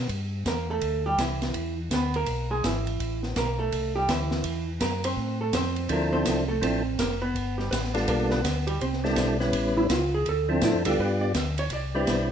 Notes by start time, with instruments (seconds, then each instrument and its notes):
0.09 tonewheel organ G2, kick, ride
0.45 tonewheel organ E2, hollow-body jazz guitar A#3 A#4, kick, snare, hi-hat pedal, ride
0.70 hollow-body jazz guitar A3 A4
0.81 tonewheel organ D2, kick, ride
1.06 hollow-body jazz guitar G3 G4
1.18 tonewheel organ C2, hollow-body jazz guitar E3 E4, kick, snare, hi-hat pedal, ride
1.42 snare, ride
1.54 tonewheel organ E2, kick, ride
1.91 tonewheel organ D2, hollow-body jazz guitar B3 B4, kick, snare, hi-hat pedal, ride
2.14 hollow-body jazz guitar A#3 A#4, ride
2.26 tonewheel organ B1, kick, ride
2.51 hollow-body jazz guitar G#3 G#4
2.64 tonewheel organ G#1, hollow-body jazz guitar E3 E4, kick, snare, hi-hat pedal, ride
2.87 ride
3.00 tonewheel organ A1, kick, ride
3.23 snare
3.36 tonewheel organ B1, hollow-body jazz guitar A#3 A#4, kick, snare, hi-hat pedal, ride
3.59 hollow-body jazz guitar A3 A4
3.72 tonewheel organ C2, kick, ride
3.96 hollow-body jazz guitar G3 G4
4.08 tonewheel organ D2, hollow-body jazz guitar E3 E4, kick, snare, hi-hat pedal, ride
4.31 snare
4.44 tonewheel organ E2, kick, ride
4.80 tonewheel organ F#2, hollow-body jazz guitar A#3 A#4, kick, snare, hi-hat pedal, ride
5.04 hollow-body jazz guitar C4 C5, ride
5.17 tonewheel organ A2, kick
5.41 hollow-body jazz guitar A3 A4
5.53 tonewheel organ F2, hollow-body jazz guitar C4 C5, kick, snare, hi-hat pedal, ride
5.76 ride
5.89 tonewheel organ D2 F3 C4 D4 E4 A4, hollow-body jazz guitar A#3 A#4, kick, ride
6.13 hollow-body jazz guitar C4 C5
6.25 tonewheel organ C2, kick, snare, hi-hat pedal, ride
6.48 hollow-body jazz guitar A3 A4
6.61 tonewheel organ A1 F3 C4 D4 E4 A4, hollow-body jazz guitar C4 C5, kick, ride
6.99 tonewheel organ F1, hollow-body jazz guitar A#3 A#4, kick, snare, hi-hat pedal, ride
7.22 hollow-body jazz guitar B3 B4
7.35 tonewheel organ G1, kick, ride
7.58 hollow-body jazz guitar G3 G4, snare
7.71 tonewheel organ A1, hollow-body jazz guitar B3 B4, kick, snare, hi-hat pedal, ride
7.84 snare
7.94 tonewheel organ G3 B3 D4 F4 A4, snare, ride
8.08 tonewheel organ B1, hollow-body jazz guitar A#3 A#4, kick, ride
8.30 hollow-body jazz guitar B3 B4, snare
8.44 tonewheel organ D2, kick, snare, hi-hat pedal, ride
8.67 hollow-body jazz guitar G3 G4, ride
8.81 tonewheel organ C2, hollow-body jazz guitar C4 C5, kick, ride
8.93 snare
9.04 tonewheel organ G3 C4 D4 E4 A4, snare
9.16 tonewheel organ B1, kick, snare, hi-hat pedal, ride
9.40 tonewheel organ G3 B3 C#4 E4 B4, snare
9.52 tonewheel organ A1, kick, ride
9.77 hollow-body jazz guitar E4
9.89 tonewheel organ C#2, hollow-body jazz guitar F4, kick, snare, hi-hat pedal, ride
10.14 hollow-body jazz guitar G#4
10.26 tonewheel organ D2, hollow-body jazz guitar A4, kick, ride
10.48 tonewheel organ F3 C4 D4 E4 A4, hollow-body jazz guitar C4
10.61 tonewheel organ A2, hollow-body jazz guitar E4, kick, snare, hi-hat pedal, ride
10.74 tonewheel organ F2
10.85 tonewheel organ D2 G3 B3 D4 F4 G4, hollow-body jazz guitar A4, ride
10.99 tonewheel organ G2, hollow-body jazz guitar B4, kick
11.21 hollow-body jazz guitar D5
11.34 tonewheel organ D2, hollow-body jazz guitar E5, kick, snare, hi-hat pedal, ride
11.58 hollow-body jazz guitar C#5, ride
11.70 tonewheel organ C2, hollow-body jazz guitar D5, kick, ride
11.95 tonewheel organ G3 C4 D4 E4 B4, hollow-body jazz guitar G4
12.07 tonewheel organ B1, kick, snare, hi-hat pedal, ride